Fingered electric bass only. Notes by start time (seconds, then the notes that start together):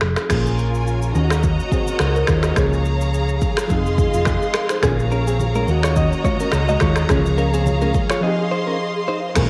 0.02 F1
0.30 A#1
1.15 D#2
2.00 C#2
2.29 D#2
2.57 C#2
3.70 F1
4.14 F1
4.83 A#1
5.68 D#2
6.53 C#2
6.81 D#2
7.10 C#2
9.36 A#1